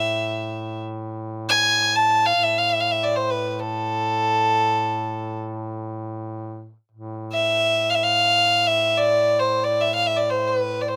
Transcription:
Already playing: A2 E5
1.49 G#5
1.96 A5
2.26 F5
2.35 A2
2.43 E5
2.58 F5
2.69 E5
2.80 F5
2.91 E5
3.03 D5
3.15 C5
3.30 B4
3.50 B4
3.60 A4
6.92 A2
7.32 E5
7.89 F5
7.94 E5
8.03 F5
8.67 E5
8.97 D5
9.39 C5
9.64 D5
9.81 E5
9.95 F5
10.07 E5
10.16 D5
10.30 C5
10.47 B4
10.81 D5
10.88 C5

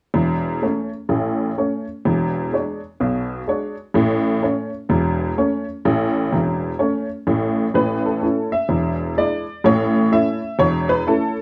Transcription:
0.14 E1 E2
0.62 A3 C#4 C#5
1.09 A1 A2
1.58 A3 C#4 C#5
2.05 E1 E2
2.53 G#3 D4 C#5
3.00 B1 B2
3.47 G#3 D4 C#5
3.94 A1 A2
4.42 A3 C#4 C#5
4.89 E1 E2
5.38 A3 C#4 C#5
5.85 A1 A2
6.32 E1 E2
6.79 A3 C#4 C#5
7.27 A1 A2
7.74 A1 A2 B4
8.06 A4
8.22 A3 C#4 E4
8.52 E5
8.68 E1 E2
9.17 G#3 D4 E4 D5
9.64 A1 A2 C#5
10.12 A3 C#4 E4 E5
10.59 E1 E2 C#5
10.89 B4
11.07 A3 C#4 E4 A4

